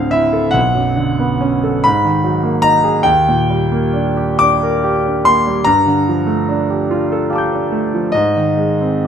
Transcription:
Already playing: D2 A2 D3 C4 F5
0.11 E4 E5
0.33 A4
0.51 B1 F#5
0.75 F#2
0.96 D3
1.19 B3
1.41 C#4
1.64 A4
1.84 G#2 B5
2.05 D#3
2.24 F#3
2.43 A#3
2.62 D#4 A#5
2.84 G#4
3.03 D#2 G5
3.28 A#2
3.50 G3
3.72 A#3
3.93 D4
4.17 G4
4.39 D4 D6
4.63 A#4
4.84 G4
5.06 D4
5.25 A#3 C6
5.47 G3
5.64 G2 A#5
5.86 D3
6.08 F3
6.27 A3
6.49 D4
6.70 G4
6.91 F4
7.12 A4
7.30 G4 F5 A5
7.36 D6 G6
7.53 D4
7.72 A3
7.94 F3
8.12 G#2 D#5
8.36 D#3
8.57 G#3
8.81 C4

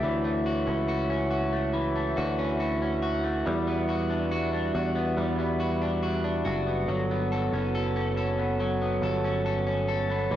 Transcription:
Already playing: A3 C#4 G4 E5
0.02 D2 E3 E4 F#4 C#5
0.24 A3
0.46 F#4
0.67 C#2 C#4
0.88 F#4
1.10 C#4
1.31 F#4
1.53 A3
1.73 E3
1.96 A3
2.17 D2 F#4
2.39 C#4
2.60 F#4
2.82 C#4
3.02 F#4
3.24 A3
3.45 E2 G3
3.67 B3
3.89 F#4
4.10 D4
4.31 F#4
4.53 D4
4.75 E2 F#4
4.96 B3
5.17 E2 G3
5.39 B3
5.60 F#4
5.82 D4
6.03 F#4
6.24 D4
6.45 F#1 F#4
6.67 B3
6.87 G1 F#3 B3 A4 C#5
7.11 B3
7.32 A4
7.53 F#1 C#4
7.75 A4
7.96 C#4
8.17 A4
8.38 B3
8.60 F#3
8.82 B3
9.02 G1 A4
9.24 C#4
9.46 A4
9.67 C#4
9.88 A4
10.10 B3
10.30 A1 E3 A3 E4 G4

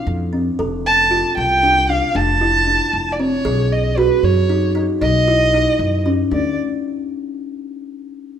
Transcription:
Already playing: D4
0.07 F2
0.33 C4
0.59 F1 A4
0.86 A5
1.11 F4
1.37 C2 G5
1.63 D4
1.89 D4 F5
2.15 F1 D4 A5
2.41 E4
2.67 D4
2.93 F1
3.12 D5
3.19 C4 C#5
3.45 B1 G#4
3.72 D#5
3.98 F#4 B4
4.23 F#2 C#5
4.49 D#4
4.75 D#4
5.01 B1 D#4 D#5
5.28 E4
5.54 D#4
5.79 F#2
6.06 C#4
6.31 D2 D4 D5

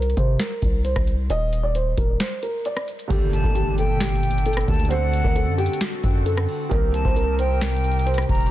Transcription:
Already playing: C2 A#4
0.02 closed hi-hat
0.10 closed hi-hat
0.17 C3 C5, kick, closed hi-hat
0.40 A#4, snare, clap, closed hi-hat
0.62 C2, kick, closed hi-hat
0.84 C5, closed hi-hat
0.96 C2, kick, cross-stick
1.07 closed hi-hat
1.30 D#1 D#5, closed hi-hat
1.53 closed hi-hat
1.63 D5
1.75 C5, closed hi-hat
1.98 D#1 A#4, kick, closed hi-hat
2.20 C5, snare, clap, closed hi-hat
2.43 A#4, closed hi-hat
2.65 D5, closed hi-hat
2.77 cross-stick
2.88 closed hi-hat, open hi-hat
2.99 closed hi-hat
3.08 G1 A#2 D3 A3 A#3 G4 A4, kick, closed hi-hat, crash, impact
3.12 A4
3.33 A5, closed hi-hat
3.44 G1 A4, kick
3.55 G4, closed hi-hat
3.78 A4 G5, closed hi-hat
4.00 G4, snare, clap, closed hi-hat
4.08 closed hi-hat
4.16 closed hi-hat
4.23 closed hi-hat
4.31 closed hi-hat
4.38 closed hi-hat
4.46 A4, closed hi-hat
4.53 cross-stick, closed hi-hat
4.61 closed hi-hat
4.67 D2 D3 A3 A#3 G4 A4 A5, kick, closed hi-hat
4.74 closed hi-hat
4.79 closed hi-hat
4.85 D3, closed hi-hat
4.90 A3 C4 F#4 A4 C5 F#5, closed hi-hat
5.13 closed hi-hat
5.24 D2 A#4, kick
5.35 A4, closed hi-hat
5.47 F#2
5.58 G4 G5, closed hi-hat
5.66 closed hi-hat
5.74 closed hi-hat
5.81 F#4, snare, clap, closed hi-hat
6.04 F#2, kick, closed hi-hat
6.26 A4, closed hi-hat
6.37 cross-stick
6.49 open hi-hat
6.69 C2 C3 D#3 A#3 C4 G4 A#4, kick, closed hi-hat
6.74 A#4
6.94 A5, closed hi-hat
7.05 C2 C5, kick
7.16 A#4, closed hi-hat
7.39 C5 G5, closed hi-hat
7.61 A#4, snare, clap, closed hi-hat
7.69 closed hi-hat
7.77 closed hi-hat
7.84 closed hi-hat
7.92 closed hi-hat
7.99 closed hi-hat
8.06 C5, closed hi-hat
8.14 cross-stick, closed hi-hat
8.22 closed hi-hat
8.29 D#1 A#5, kick, closed hi-hat
8.35 closed hi-hat
8.41 closed hi-hat
8.46 closed hi-hat

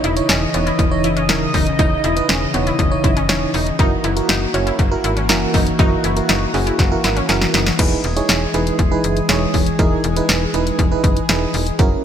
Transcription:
Already playing: C#3 E3 D#5
0.04 E1 E4, closed hi-hat
0.17 D#4 E4 C#5, closed hi-hat
0.29 E1 C#4, snare, closed hi-hat
0.54 E1 B3 D#4 E4 C#5, closed hi-hat
0.67 E4, closed hi-hat
0.79 E1, kick, closed hi-hat
0.91 D#4 E4 C#5
1.04 F#1 E4, closed hi-hat
1.17 C#4, closed hi-hat
1.29 E1 C#4 D#4 E4 A#4, snare, closed hi-hat
1.54 E1 D#4, kick, open hi-hat
1.67 closed hi-hat
1.79 E1 D#4 E4 D#5, kick, closed hi-hat
2.04 E1 E4, closed hi-hat
2.16 D#4 E4 B4, closed hi-hat
2.29 E1 C#4, snare, closed hi-hat
2.54 E1 B3 D#4 E4 C#5, closed hi-hat
2.67 E4, closed hi-hat
2.79 E1, kick, closed hi-hat
2.91 D#4 E4 C#5
3.04 F#1 E4, kick, closed hi-hat
3.17 C#4, closed hi-hat
3.29 E1 C#4 D#4 E4 C#5, snare, closed hi-hat
3.54 E1 D#4, open hi-hat
3.67 closed hi-hat
3.79 F#1 E3 A#3 D#4 E4 F#4 A#4, kick, closed hi-hat
4.04 F#1 E4, closed hi-hat
4.17 E4 F#4 A#4, closed hi-hat
4.29 F#1 D#4, snare, closed hi-hat
4.54 F#1 C#4 E4 F#4 C#5, closed hi-hat
4.67 E4, closed hi-hat
4.79 F#1, kick, closed hi-hat
4.91 E4 F#4 A#4
5.04 G#1 E4, closed hi-hat
5.17 C#4, closed hi-hat
5.29 F#1 C#4 E4 F#4 A#4, snare, closed hi-hat
5.54 F#1 D#4, kick, open hi-hat
5.67 closed hi-hat
5.79 F#1 D#4 E4 F#4 A#4, kick, closed hi-hat
6.04 F#1 E4, closed hi-hat
6.16 E4 F#4 A#4, closed hi-hat
6.29 F#1 D#4, snare, closed hi-hat
6.54 F#1 C#4 E4 F#4 G#4, open hi-hat
6.67 E4, closed hi-hat
6.79 F#1, kick, snare, closed hi-hat
6.92 E4 F#4 A#4
7.04 G#1 E4, snare, closed hi-hat
7.16 C#4, closed hi-hat
7.29 F#1 C#4 E4 F#4 A#4, snare, closed hi-hat
7.42 snare
7.54 F#1 D#4, snare, closed hi-hat
7.67 snare, closed hi-hat
7.79 E1 E3 G#3 D#4 E4 G#4 B4, kick, closed hi-hat, crash
8.04 E1, closed hi-hat
8.16 D#4 E4 G#4 C#5, closed hi-hat
8.29 E1, snare, closed hi-hat
8.54 E1 D#4 E4 G#4 B4, closed hi-hat
8.67 closed hi-hat
8.79 E1, kick, closed hi-hat
8.91 D#4 E4 G#4 B4
9.04 F#1, closed hi-hat
9.17 closed hi-hat
9.29 E1 D#4 E4 G#4 C#5, snare, closed hi-hat
9.54 E1, kick, open hi-hat
9.67 closed hi-hat
9.79 E1 D#4 E4 G#4 A#4, kick, closed hi-hat
10.04 E1, closed hi-hat
10.16 D#4 E4 G#4 B4, closed hi-hat
10.29 E1, snare, closed hi-hat
10.54 E1 D#4 E4 G#4 B4, closed hi-hat
10.67 closed hi-hat
10.79 E1, kick, closed hi-hat
10.91 D#4 E4 G#4 B4
11.04 F#1, kick, closed hi-hat
11.17 closed hi-hat
11.29 E1 D#4 E4 G#4 B4, snare, closed hi-hat
11.54 E1, open hi-hat
11.67 closed hi-hat
11.79 F#1 E3 A#3 C#4 E4 F#4 A#4, kick, closed hi-hat

